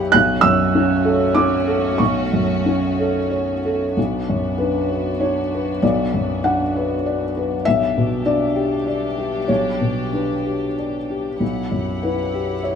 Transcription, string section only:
0.00 0.14 E4 medium
0.00 0.14 F#5 medium
0.14 3.97 A3 medium
0.14 3.98 C#4 medium
0.14 3.93 F#4 medium
3.96 7.61 B3 medium
3.96 7.62 D4 medium
3.96 7.61 F#4 medium
7.67 11.42 G3 medium
7.67 11.37 D4 medium
7.67 11.40 G4 medium
11.41 12.75 E4 soft
11.41 12.75 G4 soft
11.41 12.75 F#5 soft

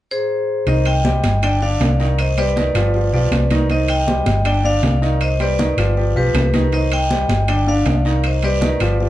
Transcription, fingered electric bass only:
0.67 1.19 C2 medium
1.23 1.76 G1 medium
1.80 2.69 C2 medium
2.74 3.10 G1 medium
3.13 3.30 B1 soft
3.31 4.20 C2 medium
4.26 4.79 G1 medium
4.83 5.72 C2 medium
5.77 6.13 G1 medium
6.15 6.33 B1 soft
6.34 7.23 C2 medium
7.28 7.82 G1 medium
7.86 8.75 C2 medium
8.80 9.09 G1 medium

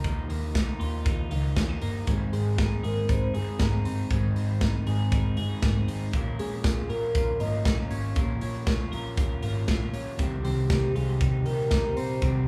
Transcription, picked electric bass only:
0.04 0.25 D#2 medium
0.29 0.60 D#2 medium
0.80 1.01 D#2 loud
1.06 1.27 D#2 medium
1.31 1.52 C#2 medium
1.57 1.77 D#2 medium
1.82 2.03 G1 medium
2.07 2.28 G#1 medium
2.33 2.64 G#1 medium
2.84 3.05 G#1 medium
3.09 3.30 G#1 medium
3.34 3.55 G1 medium
3.60 3.81 G#1 medium
3.85 4.06 G1 medium
4.10 4.31 G#1 medium
4.36 4.67 G#1 medium
4.87 5.08 G#1 medium
5.12 5.33 G#1 loud
5.38 5.58 G1 medium
5.62 5.83 G#1 medium
5.88 6.09 G#1 medium
6.13 6.34 A#1 loud
6.39 6.70 A#1 medium
6.90 7.10 A#1 medium
7.15 7.36 A#1 medium
7.40 7.61 G#1 medium
7.65 7.86 A#1 medium
7.91 8.12 G#1 medium
8.16 8.37 A#1 medium
8.41 8.73 A#1 medium
8.92 9.13 A#1 loud
9.17 9.38 A#1 medium
9.43 9.64 G#1 medium
9.68 9.89 A#1 medium
9.93 10.14 A#1 medium
10.19 10.40 C2 medium
10.45 10.76 C2 medium
10.95 11.16 C2 medium
11.21 11.42 C2 loud
11.46 11.67 A#1 medium
11.71 11.92 C2 medium
11.97 12.18 A#1 medium
12.22 12.43 C2 loud

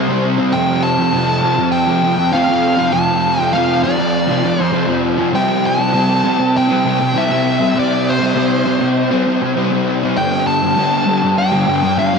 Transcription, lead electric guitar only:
0.00 0.19 C5 medium
0.53 0.83 G5 loud
0.83 1.71 A5 loud
1.72 2.34 G5 loud
2.33 2.95 F5 loud
2.92 3.40 A5 loud
3.40 3.55 G5 loud
3.53 3.83 F5 medium
3.83 4.63 D5 medium
4.63 5.00 C5 medium
5.35 5.66 G5 loud
5.66 6.57 A5 loud
6.57 7.19 G5 loud
7.18 7.79 E5 loud
7.79 8.09 D5 loud
8.09 9.85 C5 medium
10.17 10.47 G5 loud
10.47 11.38 A5 medium
11.38 11.98 G5 medium
11.99 12.19 F5 loud

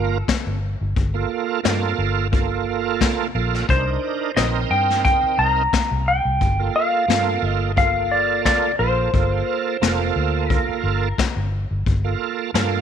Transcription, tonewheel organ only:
0.00 0.18 A#3 medium
0.00 0.18 F4 medium
0.00 0.18 A#4 medium
1.14 1.60 A#3 medium
1.14 1.61 F4 medium
1.14 1.61 A4 medium
1.63 2.27 A#3 medium
1.63 2.27 F4 medium
1.63 2.28 A4 loud
2.32 3.27 A#3 medium
2.32 3.27 F4 medium
2.32 3.28 A4 loud
3.35 3.66 A#3 medium
3.35 3.66 F4 medium
3.35 3.67 A4 medium
3.68 4.32 D4 medium
3.68 4.32 D#4 medium
3.68 4.32 A#4 medium
4.36 5.63 C4 medium
4.36 5.63 D#4 medium
4.36 5.63 A#4 medium
6.59 7.05 A#3 medium
6.59 7.05 F4 medium
6.59 7.06 A4 medium
7.08 7.72 A#3 medium
7.08 7.72 F4 medium
7.08 7.72 A4 medium
7.76 8.72 A#3 medium
7.76 8.72 F4 medium
7.76 8.72 A4 medium
8.79 9.11 A#3 medium
8.79 9.11 F4 medium
8.79 9.11 A4 medium
9.14 9.77 A#3 medium
9.14 9.77 F4 medium
9.14 9.77 A4 medium
9.81 11.08 A#3 medium
9.81 11.09 F4 medium
9.81 11.09 A4 loud
12.04 12.51 A#3 medium
12.04 12.51 F4 medium
12.04 12.51 A4 medium
12.54 12.81 A#3 medium
12.54 12.81 F4 medium
12.54 12.81 A4 loud

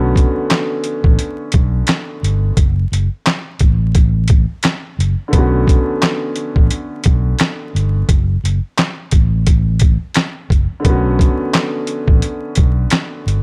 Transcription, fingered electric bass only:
0.00 0.23 B1 loud
1.04 1.16 A1 medium
1.54 1.81 B1 loud
2.23 2.50 G1 medium
2.57 2.84 F#1 loud
2.92 3.07 F#1 loud
3.61 4.45 A1 medium
4.99 5.14 F#1 medium
5.33 5.75 B1 loud
6.56 6.68 A1 medium
7.06 7.33 B1 loud
7.75 8.02 G1 medium
8.09 8.36 F#1 loud
8.44 8.59 F#1 loud
9.13 9.97 A1 loud
10.50 10.65 F#1 medium
10.85 11.27 B1 loud
12.08 12.20 A1 medium
12.58 12.84 B1 loud
13.27 13.43 G1 medium

